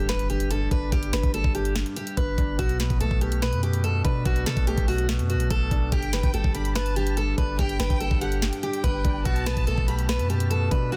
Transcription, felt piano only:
0, 0, Header, 1, 2, 480
1, 0, Start_track
1, 0, Key_signature, 2, "minor"
1, 0, Tempo, 416667
1, 1062, Time_signature, 4, 2, 24, 8
1, 12632, End_track
2, 0, Start_track
2, 0, Title_t, "Felt piano"
2, 0, Program_c, 0, 0
2, 0, Control_c, 0, 64, 127
2, 0, Note_on_c, 0, 43, 74
2, 0, Note_on_c, 0, 55, 92
2, 101, Note_off_c, 0, 43, 0
2, 101, Note_on_c, 0, 43, 94
2, 323, Note_off_c, 0, 43, 0
2, 341, Note_on_c, 0, 43, 79
2, 565, Note_off_c, 0, 43, 0
2, 582, Note_on_c, 0, 43, 93
2, 822, Note_off_c, 0, 55, 0
2, 822, Note_on_c, 0, 62, 92
2, 1047, Note_off_c, 0, 43, 0
2, 1064, Note_on_c, 0, 43, 98
2, 1287, Note_off_c, 0, 43, 0
2, 1304, Note_on_c, 0, 43, 74
2, 1544, Note_on_c, 0, 55, 89
2, 1766, Note_off_c, 0, 43, 0
2, 1783, Note_on_c, 0, 43, 82
2, 2006, Note_off_c, 0, 43, 0
2, 2022, Note_off_c, 0, 62, 0
2, 2023, Note_on_c, 0, 43, 94
2, 2247, Note_off_c, 0, 43, 0
2, 2264, Note_on_c, 0, 43, 76
2, 2487, Note_off_c, 0, 43, 0
2, 2504, Note_on_c, 0, 43, 87
2, 2740, Note_on_c, 0, 62, 87
2, 2743, Note_off_c, 0, 55, 0
2, 2980, Note_on_c, 0, 47, 103
2, 2981, Note_off_c, 0, 62, 0
2, 2983, Note_off_c, 0, 43, 0
2, 2999, Control_c, 0, 64, 0
2, 3205, Note_off_c, 0, 47, 0
2, 3211, Control_c, 0, 64, 127
2, 3222, Note_on_c, 0, 47, 79
2, 3463, Note_on_c, 0, 57, 85
2, 3687, Note_off_c, 0, 47, 0
2, 3704, Note_on_c, 0, 47, 85
2, 3923, Note_off_c, 0, 47, 0
2, 3940, Note_on_c, 0, 47, 88
2, 4164, Note_off_c, 0, 47, 0
2, 4181, Note_on_c, 0, 47, 83
2, 4404, Note_off_c, 0, 47, 0
2, 4422, Note_on_c, 0, 47, 88
2, 4661, Note_on_c, 0, 62, 93
2, 4663, Note_off_c, 0, 57, 0
2, 4885, Note_off_c, 0, 47, 0
2, 4902, Note_on_c, 0, 47, 89
2, 5123, Note_off_c, 0, 47, 0
2, 5140, Note_on_c, 0, 47, 78
2, 5383, Note_on_c, 0, 57, 83
2, 5607, Note_off_c, 0, 47, 0
2, 5624, Note_on_c, 0, 47, 81
2, 5845, Note_off_c, 0, 47, 0
2, 5862, Note_off_c, 0, 62, 0
2, 5862, Note_on_c, 0, 47, 95
2, 6087, Note_off_c, 0, 47, 0
2, 6104, Note_on_c, 0, 47, 86
2, 6326, Note_off_c, 0, 47, 0
2, 6344, Note_on_c, 0, 47, 89
2, 6582, Note_on_c, 0, 62, 90
2, 6583, Note_off_c, 0, 57, 0
2, 6822, Note_off_c, 0, 62, 0
2, 6823, Note_off_c, 0, 47, 0
2, 6823, Note_on_c, 0, 43, 98
2, 6839, Control_c, 0, 64, 0
2, 7036, Control_c, 0, 64, 127
2, 7043, Note_off_c, 0, 43, 0
2, 7060, Note_on_c, 0, 43, 76
2, 7301, Note_on_c, 0, 55, 92
2, 7523, Note_off_c, 0, 43, 0
2, 7541, Note_on_c, 0, 43, 77
2, 7764, Note_off_c, 0, 43, 0
2, 7782, Note_on_c, 0, 43, 94
2, 8004, Note_off_c, 0, 43, 0
2, 8021, Note_on_c, 0, 43, 78
2, 8244, Note_off_c, 0, 43, 0
2, 8261, Note_on_c, 0, 43, 86
2, 8502, Note_off_c, 0, 55, 0
2, 8504, Note_on_c, 0, 62, 92
2, 8727, Note_off_c, 0, 43, 0
2, 8744, Note_on_c, 0, 43, 98
2, 8967, Note_off_c, 0, 43, 0
2, 8984, Note_on_c, 0, 43, 73
2, 9223, Note_on_c, 0, 55, 86
2, 9444, Note_off_c, 0, 43, 0
2, 9462, Note_on_c, 0, 43, 88
2, 9686, Note_off_c, 0, 43, 0
2, 9703, Note_off_c, 0, 62, 0
2, 9703, Note_on_c, 0, 43, 97
2, 9927, Note_off_c, 0, 43, 0
2, 9944, Note_on_c, 0, 43, 79
2, 10167, Note_off_c, 0, 43, 0
2, 10184, Note_on_c, 0, 43, 89
2, 10421, Note_on_c, 0, 62, 89
2, 10423, Note_off_c, 0, 55, 0
2, 10662, Note_off_c, 0, 62, 0
2, 10662, Note_on_c, 0, 47, 104
2, 10663, Note_off_c, 0, 43, 0
2, 10677, Control_c, 0, 64, 0
2, 10867, Control_c, 0, 64, 127
2, 10887, Note_off_c, 0, 47, 0
2, 10905, Note_on_c, 0, 47, 80
2, 11144, Note_on_c, 0, 57, 86
2, 11366, Note_off_c, 0, 47, 0
2, 11383, Note_on_c, 0, 47, 82
2, 11604, Note_off_c, 0, 47, 0
2, 11621, Note_on_c, 0, 47, 89
2, 11848, Note_off_c, 0, 47, 0
2, 11865, Note_on_c, 0, 47, 85
2, 12087, Note_off_c, 0, 47, 0
2, 12105, Note_on_c, 0, 47, 88
2, 12343, Note_off_c, 0, 57, 0
2, 12343, Note_on_c, 0, 62, 90
2, 12566, Note_off_c, 0, 47, 0
2, 12584, Note_on_c, 0, 47, 93
2, 12632, Note_off_c, 0, 47, 0
2, 12632, Note_off_c, 0, 62, 0
2, 12632, End_track
0, 0, End_of_file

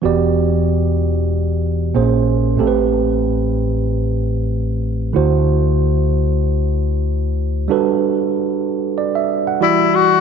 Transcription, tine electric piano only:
0, 0, Header, 1, 2, 480
1, 0, Start_track
1, 0, Key_signature, 1, "minor"
1, 0, Tempo, 638298
1, 24, Time_signature, 4, 2, 24, 8
1, 7673, End_track
2, 0, Start_track
2, 0, Title_t, "Tine electric piano"
2, 0, Program_c, 0, 4
2, 13, Note_on_c, 0, 52, 59
2, 22, Note_on_c, 0, 59, 51
2, 26, Note_on_c, 0, 66, 52
2, 38, Note_on_c, 0, 67, 52
2, 41, Note_on_c, 0, 74, 61
2, 166, Control_c, 0, 64, 127
2, 1430, Note_off_c, 0, 52, 0
2, 1434, Note_off_c, 0, 59, 0
2, 1436, Note_off_c, 0, 66, 0
2, 1443, Note_off_c, 0, 67, 0
2, 1444, Note_off_c, 0, 74, 0
2, 1463, Note_on_c, 0, 46, 57
2, 1464, Note_on_c, 0, 58, 53
2, 1465, Note_on_c, 0, 60, 41
2, 1469, Note_on_c, 0, 68, 53
2, 1475, Control_c, 0, 64, 0
2, 1475, Note_on_c, 0, 72, 63
2, 1518, Note_off_c, 0, 60, 0
2, 1519, Note_on_c, 0, 61, 52
2, 1616, Control_c, 0, 64, 127
2, 1931, Note_on_c, 0, 45, 58
2, 1938, Note_on_c, 0, 57, 55
2, 1944, Note_off_c, 0, 46, 0
2, 1944, Note_off_c, 0, 58, 0
2, 1947, Note_off_c, 0, 68, 0
2, 1947, Note_on_c, 0, 60, 54
2, 1949, Note_off_c, 0, 72, 0
2, 1950, Note_on_c, 0, 67, 53
2, 1954, Control_c, 0, 64, 0
2, 1956, Note_on_c, 0, 69, 52
2, 1972, Note_off_c, 0, 61, 0
2, 2003, Note_off_c, 0, 69, 0
2, 2009, Note_on_c, 0, 71, 66
2, 2087, Control_c, 0, 64, 127
2, 3828, Note_off_c, 0, 45, 0
2, 3831, Note_off_c, 0, 57, 0
2, 3836, Note_off_c, 0, 60, 0
2, 3837, Note_off_c, 0, 67, 0
2, 3859, Note_on_c, 0, 50, 60
2, 3861, Note_on_c, 0, 57, 56
2, 3867, Note_off_c, 0, 71, 0
2, 3869, Note_on_c, 0, 64, 53
2, 3875, Control_c, 0, 64, 0
2, 3879, Note_on_c, 0, 66, 54
2, 3883, Note_on_c, 0, 72, 62
2, 3994, Control_c, 0, 64, 127
2, 5752, Note_off_c, 0, 50, 0
2, 5753, Note_off_c, 0, 57, 0
2, 5757, Note_off_c, 0, 64, 0
2, 5762, Note_off_c, 0, 66, 0
2, 5764, Note_off_c, 0, 72, 0
2, 5776, Note_on_c, 0, 55, 57
2, 5787, Note_on_c, 0, 62, 53
2, 5793, Note_on_c, 0, 66, 54
2, 5794, Control_c, 0, 64, 0
2, 5798, Note_on_c, 0, 69, 56
2, 5802, Note_on_c, 0, 71, 66
2, 5942, Control_c, 0, 64, 127
2, 6751, Note_on_c, 0, 74, 53
2, 6871, Note_off_c, 0, 74, 0
2, 6884, Note_on_c, 0, 76, 57
2, 7107, Note_off_c, 0, 76, 0
2, 7124, Note_on_c, 0, 78, 51
2, 7191, Note_off_c, 0, 55, 0
2, 7197, Note_off_c, 0, 62, 0
2, 7200, Note_off_c, 0, 66, 0
2, 7202, Note_off_c, 0, 69, 0
2, 7205, Note_off_c, 0, 71, 0
2, 7223, Note_on_c, 0, 52, 55
2, 7225, Note_on_c, 0, 64, 50
2, 7232, Note_on_c, 0, 55, 53
2, 7232, Note_on_c, 0, 66, 53
2, 7234, Control_c, 0, 64, 0
2, 7238, Note_on_c, 0, 74, 66
2, 7347, Note_off_c, 0, 78, 0
2, 7368, Control_c, 0, 64, 127
2, 7673, Note_off_c, 0, 52, 0
2, 7673, Note_off_c, 0, 55, 0
2, 7673, Note_off_c, 0, 64, 0
2, 7673, Note_off_c, 0, 66, 0
2, 7673, Note_off_c, 0, 74, 0
2, 7673, End_track
0, 0, End_of_file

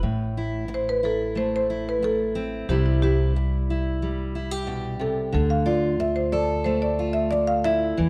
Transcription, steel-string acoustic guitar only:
0, 0, Header, 1, 3, 480
1, 0, Start_track
1, 0, Key_signature, 0, "minor"
1, 0, Tempo, 662252
1, 27, Time_signature, 4, 2, 24, 8
1, 5866, End_track
2, 0, Start_track
2, 0, Title_t, "Steel-string acoustic guitar"
2, 0, Program_c, 0, 25
2, 21, Note_on_c, 0, 45, 63
2, 271, Note_on_c, 0, 64, 50
2, 486, Note_off_c, 0, 45, 0
2, 744, Note_off_c, 0, 64, 0
2, 747, Note_on_c, 0, 64, 51
2, 981, Note_on_c, 0, 57, 55
2, 1229, Note_off_c, 0, 64, 0
2, 1232, Note_on_c, 0, 64, 48
2, 1705, Note_on_c, 0, 60, 58
2, 1917, Note_off_c, 0, 57, 0
2, 1947, Note_off_c, 0, 60, 0
2, 1948, Note_on_c, 0, 48, 69
2, 1952, Note_on_c, 0, 55, 56
2, 1959, Note_off_c, 0, 64, 0
2, 1959, Note_on_c, 0, 64, 58
2, 2194, Note_off_c, 0, 64, 0
2, 2197, Note_on_c, 0, 64, 55
2, 2429, Note_off_c, 0, 48, 0
2, 2681, Note_off_c, 0, 64, 0
2, 2683, Note_on_c, 0, 64, 54
2, 2907, Note_off_c, 0, 55, 0
2, 2916, Note_on_c, 0, 55, 57
2, 3154, Note_off_c, 0, 64, 0
2, 3154, Note_on_c, 0, 64, 51
2, 3271, Note_off_c, 0, 64, 0
2, 3271, Note_on_c, 0, 67, 44
2, 3383, Note_on_c, 0, 47, 58
2, 3617, Note_off_c, 0, 47, 0
2, 3620, Note_on_c, 0, 48, 62
2, 3859, Note_on_c, 0, 50, 72
2, 3864, Note_off_c, 0, 48, 0
2, 3869, Note_off_c, 0, 67, 0
2, 3872, Note_off_c, 0, 55, 0
2, 4100, Note_on_c, 0, 65, 58
2, 4338, Note_off_c, 0, 50, 0
2, 4585, Note_on_c, 0, 69, 65
2, 4824, Note_on_c, 0, 57, 66
2, 5057, Note_off_c, 0, 65, 0
2, 5066, Note_on_c, 0, 65, 52
2, 5545, Note_on_c, 0, 64, 58
2, 5754, Note_off_c, 0, 57, 0
2, 5755, Note_off_c, 0, 65, 0
2, 5780, Note_on_c, 0, 52, 74
2, 5782, Note_off_c, 0, 69, 0
2, 5866, Note_off_c, 0, 52, 0
2, 5866, Note_off_c, 0, 64, 0
2, 5866, End_track
3, 0, Start_track
3, 0, Title_t, "Muted steel-string acoustic guitar strokes"
3, 494, Note_on_c, 9, 29, 60
3, 566, Note_off_c, 9, 29, 0
3, 1467, Note_on_c, 9, 29, 62
3, 1540, Note_off_c, 9, 29, 0
3, 2437, Note_on_c, 9, 29, 62
3, 2510, Note_off_c, 9, 29, 0
3, 4347, Note_on_c, 9, 29, 63
3, 4420, Note_off_c, 9, 29, 0
3, 5306, Note_on_c, 9, 29, 64
3, 5378, Note_off_c, 9, 29, 0
3, 5866, End_track
0, 0, End_of_file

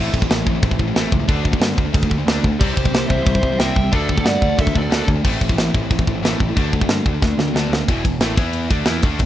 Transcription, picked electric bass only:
0, 0, Header, 1, 2, 480
1, 0, Start_track
1, 0, Tempo, 329670
1, 1865, Time_signature, 4, 2, 24, 8
1, 13478, End_track
2, 0, Start_track
2, 0, Title_t, "Picked electric bass"
2, 0, Program_c, 0, 34
2, 194, Note_on_c, 0, 33, 96
2, 365, Note_off_c, 0, 33, 0
2, 434, Note_on_c, 0, 33, 93
2, 605, Note_off_c, 0, 33, 0
2, 668, Note_on_c, 0, 33, 83
2, 842, Note_off_c, 0, 33, 0
2, 910, Note_on_c, 0, 33, 96
2, 1083, Note_off_c, 0, 33, 0
2, 1149, Note_on_c, 0, 33, 97
2, 1322, Note_off_c, 0, 33, 0
2, 1380, Note_on_c, 0, 33, 88
2, 1556, Note_off_c, 0, 33, 0
2, 1633, Note_on_c, 0, 37, 96
2, 1804, Note_off_c, 0, 37, 0
2, 1864, Note_on_c, 0, 38, 104
2, 2213, Note_off_c, 0, 38, 0
2, 2331, Note_on_c, 0, 43, 93
2, 2510, Note_off_c, 0, 43, 0
2, 2583, Note_on_c, 0, 38, 90
2, 2758, Note_off_c, 0, 38, 0
2, 2821, Note_on_c, 0, 38, 98
2, 2996, Note_off_c, 0, 38, 0
2, 3059, Note_on_c, 0, 38, 95
2, 3236, Note_off_c, 0, 38, 0
2, 3292, Note_on_c, 0, 38, 90
2, 3471, Note_off_c, 0, 38, 0
2, 3543, Note_on_c, 0, 38, 101
2, 3718, Note_off_c, 0, 38, 0
2, 3784, Note_on_c, 0, 36, 94
2, 3958, Note_off_c, 0, 36, 0
2, 4030, Note_on_c, 0, 36, 84
2, 4202, Note_off_c, 0, 36, 0
2, 4240, Note_on_c, 0, 36, 95
2, 4423, Note_off_c, 0, 36, 0
2, 4499, Note_on_c, 0, 36, 89
2, 4675, Note_off_c, 0, 36, 0
2, 4744, Note_on_c, 0, 36, 91
2, 4918, Note_off_c, 0, 36, 0
2, 4985, Note_on_c, 0, 36, 91
2, 5159, Note_off_c, 0, 36, 0
2, 5227, Note_on_c, 0, 36, 93
2, 5400, Note_off_c, 0, 36, 0
2, 5471, Note_on_c, 0, 36, 98
2, 5643, Note_off_c, 0, 36, 0
2, 5703, Note_on_c, 0, 38, 96
2, 6052, Note_off_c, 0, 38, 0
2, 6182, Note_on_c, 0, 43, 84
2, 6357, Note_off_c, 0, 43, 0
2, 6429, Note_on_c, 0, 38, 97
2, 6601, Note_off_c, 0, 38, 0
2, 6670, Note_on_c, 0, 38, 97
2, 6842, Note_off_c, 0, 38, 0
2, 6914, Note_on_c, 0, 38, 97
2, 7085, Note_off_c, 0, 38, 0
2, 7125, Note_on_c, 0, 38, 99
2, 7306, Note_off_c, 0, 38, 0
2, 7389, Note_on_c, 0, 38, 98
2, 7562, Note_off_c, 0, 38, 0
2, 7630, Note_on_c, 0, 33, 108
2, 7803, Note_off_c, 0, 33, 0
2, 7876, Note_on_c, 0, 33, 87
2, 8046, Note_off_c, 0, 33, 0
2, 8077, Note_on_c, 0, 33, 96
2, 8261, Note_off_c, 0, 33, 0
2, 8363, Note_on_c, 0, 33, 90
2, 8531, Note_off_c, 0, 33, 0
2, 8596, Note_on_c, 0, 33, 87
2, 8766, Note_off_c, 0, 33, 0
2, 8843, Note_on_c, 0, 33, 94
2, 9011, Note_off_c, 0, 33, 0
2, 9062, Note_on_c, 0, 33, 98
2, 9237, Note_off_c, 0, 33, 0
2, 9319, Note_on_c, 0, 33, 97
2, 9488, Note_off_c, 0, 33, 0
2, 9547, Note_on_c, 0, 38, 103
2, 9895, Note_off_c, 0, 38, 0
2, 10016, Note_on_c, 0, 43, 92
2, 10193, Note_off_c, 0, 43, 0
2, 10274, Note_on_c, 0, 38, 88
2, 10444, Note_off_c, 0, 38, 0
2, 10512, Note_on_c, 0, 38, 94
2, 10683, Note_off_c, 0, 38, 0
2, 10738, Note_on_c, 0, 38, 91
2, 10915, Note_off_c, 0, 38, 0
2, 10980, Note_on_c, 0, 38, 89
2, 11156, Note_off_c, 0, 38, 0
2, 11202, Note_on_c, 0, 38, 100
2, 11384, Note_off_c, 0, 38, 0
2, 11475, Note_on_c, 0, 28, 103
2, 11693, Note_off_c, 0, 28, 0
2, 11715, Note_on_c, 0, 28, 80
2, 11918, Note_off_c, 0, 28, 0
2, 11926, Note_on_c, 0, 33, 93
2, 12157, Note_off_c, 0, 33, 0
2, 12191, Note_on_c, 0, 40, 93
2, 12634, Note_off_c, 0, 40, 0
2, 12669, Note_on_c, 0, 38, 100
2, 12886, Note_off_c, 0, 38, 0
2, 12895, Note_on_c, 0, 40, 96
2, 13122, Note_off_c, 0, 40, 0
2, 13142, Note_on_c, 0, 38, 98
2, 13366, Note_off_c, 0, 38, 0
2, 13382, Note_on_c, 0, 28, 89
2, 13478, Note_off_c, 0, 28, 0
2, 13478, End_track
0, 0, End_of_file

